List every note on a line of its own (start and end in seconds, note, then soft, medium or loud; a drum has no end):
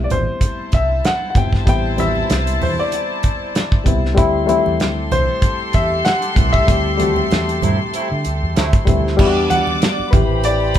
0.00 1.34 G3 medium
0.00 0.48 A3 medium
0.00 1.35 B3 medium
0.00 1.36 C4 medium
0.00 1.37 E4 medium
0.04 0.10 D5 medium
0.10 0.25 A1 medium
0.10 0.75 C5 medium
0.10 closed hi-hat medium
0.10 high conga medium
0.10 low conga medium
0.41 4.14 E4 medium
0.41 4.14 C5 medium
0.41 4.14 A5 medium
0.41 kick medium
0.41 closed hi-hat medium
0.41 muted conga soft
0.72 1.00 C2 medium
0.72 1.03 E5 medium
0.72 kick medium
0.72 closed hi-hat medium
0.72 muted conga soft
1.05 1.28 F#5 medium
1.05 snare loud
1.05 closed hi-hat medium
1.05 muted conga soft
1.30 1.60 G3 medium
1.30 1.36 F#5 medium
1.35 1.63 G1 medium
1.35 1.61 B3 medium
1.35 1.61 C4 medium
1.35 1.62 E4 medium
1.35 1.68 G5 medium
1.35 kick medium
1.35 closed hi-hat medium
1.35 muted conga soft
1.35 low conga medium
1.53 kick medium
1.53 snare soft
1.66 2.22 A1 medium
1.66 1.92 G3 medium
1.66 1.92 B3 medium
1.66 1.93 C4 medium
1.66 1.93 E4 medium
1.66 1.97 G5 medium
1.66 kick loud
1.66 closed hi-hat medium
1.97 2.98 G3 medium
1.97 2.99 C4 medium
1.97 3.00 E4 medium
1.97 2.99 B4 medium
1.97 2.64 E5 medium
1.97 closed hi-hat medium
1.97 high conga medium
2.16 high conga medium
2.30 2.57 C2 medium
2.30 snare medium
2.30 closed hi-hat medium
2.30 muted conga soft
2.47 closed hi-hat medium
2.62 2.76 E2 medium
2.62 2.79 C5 medium
2.62 open hi-hat soft
2.62 high conga medium
2.62 low conga medium
2.79 3.83 D5 medium
2.92 closed hi-hat medium
2.92 muted conga soft
3.23 kick medium
3.23 closed hi-hat medium
3.55 snare medium
3.55 closed hi-hat medium
3.55 muted conga soft
3.72 kick medium
3.84 4.14 C2 medium
3.84 4.11 G3 medium
3.84 4.11 B3 medium
3.84 4.12 C4 medium
3.84 4.13 E4 medium
3.84 kick medium
3.84 closed hi-hat medium
3.84 low conga medium
4.05 snare soft
4.15 4.45 D2 loud
4.15 4.42 G3 medium
4.15 4.42 A3 medium
4.15 4.43 C4 medium
4.15 4.43 E4 loud
4.15 9.15 G4 medium
4.15 9.15 A4 medium
4.15 9.15 C6 loud
4.15 kick loud
4.15 closed hi-hat medium
4.15 muted conga soft
4.46 5.48 G3 medium
4.46 5.49 A3 medium
4.46 5.50 C4 medium
4.46 5.50 E4 medium
4.46 closed hi-hat medium
4.46 high conga medium
4.66 4.81 E2 medium
4.66 high conga medium
4.80 5.08 D2 medium
4.80 snare loud
4.80 closed hi-hat medium
4.80 muted conga soft
5.12 5.27 C2 loud
5.12 5.77 C5 loud
5.12 closed hi-hat medium
5.12 muted conga soft
5.12 high conga medium
5.12 low conga medium
5.42 kick medium
5.42 closed hi-hat medium
5.73 6.02 E2 medium
5.73 6.07 E5 medium
5.73 kick medium
5.73 closed hi-hat medium
6.05 6.50 F#5 loud
6.05 snare medium
6.05 closed hi-hat medium
6.22 closed hi-hat medium
6.35 6.64 C2 medium
6.35 6.62 G3 medium
6.35 6.62 A3 medium
6.35 6.62 C4 medium
6.35 6.63 E4 medium
6.35 kick loud
6.35 closed hi-hat medium
6.35 muted conga soft
6.35 low conga medium
6.53 8.52 E5 loud
6.53 kick medium
6.66 7.23 D2 loud
6.66 6.93 G3 medium
6.66 6.94 A3 medium
6.66 6.94 C4 medium
6.66 6.95 G4 medium
6.66 kick loud
6.66 closed hi-hat medium
6.98 7.99 G3 medium
6.98 8.00 A3 medium
6.98 8.00 C4 medium
6.98 8.01 F#4 medium
6.98 closed hi-hat medium
6.98 muted conga soft
6.98 high conga medium
7.16 high conga medium
7.31 7.59 E2 medium
7.31 snare loud
7.31 closed hi-hat medium
7.31 muted conga soft
7.49 closed hi-hat medium
7.62 7.78 G2 loud
7.62 7.77 C3 medium
7.62 7.77 A3 medium
7.62 7.77 E4 medium
7.62 closed hi-hat medium
7.62 muted conga soft
7.62 high conga medium
7.62 low conga medium
7.94 8.08 C3 medium
7.94 8.08 A3 medium
7.94 8.08 E4 medium
7.94 closed hi-hat medium
8.11 8.24 D3 loud
8.25 8.40 D2 medium
8.25 closed hi-hat medium
8.43 8.55 E2 medium
8.56 8.71 D2 medium
8.56 9.16 C3 medium
8.56 9.16 A3 medium
8.56 9.16 E4 medium
8.56 snare loud
8.56 closed hi-hat medium
8.56 muted conga soft
8.73 kick loud
8.73 closed hi-hat soft
8.85 9.15 D2 medium
8.85 9.12 G3 medium
8.85 9.13 A3 medium
8.85 9.13 C4 medium
8.85 9.14 E4 medium
8.85 kick medium
8.85 closed hi-hat medium
8.85 low conga medium
9.07 snare soft
9.17 9.47 E2 medium
9.17 9.80 B2 medium
9.17 10.12 G3 medium
9.17 9.80 G3 medium
9.17 10.12 B3 medium
9.17 9.80 D4 medium
9.17 10.13 D4 medium
9.17 9.27 E4 medium
9.17 10.11 D5 medium
9.17 10.11 D6 medium
9.17 kick loud
9.17 crash loud
9.17 muted conga soft
9.27 10.17 F#4 loud
9.50 10.09 F#5 loud
9.50 closed hi-hat medium
9.50 muted conga soft
9.50 high conga medium
9.67 high conga medium
9.82 snare loud
9.82 closed hi-hat loud
9.82 muted conga soft
9.99 muted fingered electric bass stroke soft
10.11 10.79 A1 loud
10.11 10.79 E3 medium
10.11 10.79 C4 medium
10.11 10.79 E4 medium
10.11 10.79 G4 medium
10.11 10.79 B4 medium
10.11 10.79 C5 medium
10.11 10.79 B5 medium
10.11 kick loud
10.11 closed hi-hat medium
10.11 muted conga soft
10.11 high conga medium
10.11 low conga medium
10.44 10.79 D5 loud
10.44 closed hi-hat medium
10.44 muted conga soft
10.74 kick medium
10.74 closed hi-hat medium
10.74 muted conga soft